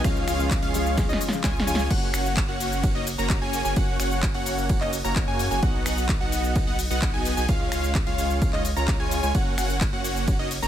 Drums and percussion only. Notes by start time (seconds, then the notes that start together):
0.04 finger snap, kick, ride, shaker
0.16 shaker
0.28 finger snap, open hi-hat, shaker
0.40 shaker
0.51 kick, clap, ride, shaker
0.63 open hi-hat, shaker
0.74 open hi-hat, shaker
0.86 shaker
0.98 kick, snare, ride, shaker
1.10 snare, shaker
1.21 open hi-hat, shaker
1.28 snare
1.33 shaker
1.44 kick, snare, clap, ride, shaker
1.56 snare, shaker
1.67 open hi-hat, shaker
1.75 snare
1.79 shaker
1.91 kick, crash, ride, shaker
2.14 finger snap, open hi-hat, shaker
2.26 shaker
2.37 kick, clap, ride, shaker
2.60 open hi-hat, shaker
2.72 shaker
2.83 kick, ride, shaker
3.07 open hi-hat, shaker
3.19 shaker
3.30 kick, clap, ride, shaker
3.53 open hi-hat, shaker
3.65 shaker
3.76 kick, ride, shaker
4.00 finger snap, open hi-hat, shaker
4.12 shaker
4.23 kick, clap, ride, shaker
4.34 open hi-hat
4.46 open hi-hat, shaker
4.58 shaker
4.69 kick, ride, shaker
4.81 clap
4.93 open hi-hat, shaker
5.05 shaker
5.16 kick, clap, ride, shaker
5.39 open hi-hat, shaker
5.51 shaker
5.63 kick, ride, shaker
5.86 finger snap, open hi-hat, shaker
5.98 shaker
6.09 kick, clap, ride, shaker
6.32 open hi-hat, shaker
6.44 shaker
6.56 kick, ride, shaker
6.79 open hi-hat, shaker
6.91 shaker
7.02 kick, clap, ride, shaker
7.25 open hi-hat, shaker
7.37 shaker
7.49 kick, ride, shaker
7.72 finger snap, open hi-hat, shaker
7.84 shaker
7.95 kick, clap, ride, shaker
8.07 open hi-hat
8.18 open hi-hat, shaker
8.30 shaker
8.42 kick, ride, shaker
8.53 clap
8.65 open hi-hat, shaker
8.77 shaker
8.88 kick, clap, ride, shaker
9.11 open hi-hat, shaker
9.23 shaker
9.35 kick, ride, shaker
9.58 finger snap, open hi-hat, shaker
9.70 shaker
9.81 kick, clap, ride, shaker
10.04 open hi-hat, shaker
10.16 shaker
10.28 kick, ride, shaker
10.51 open hi-hat, shaker
10.63 shaker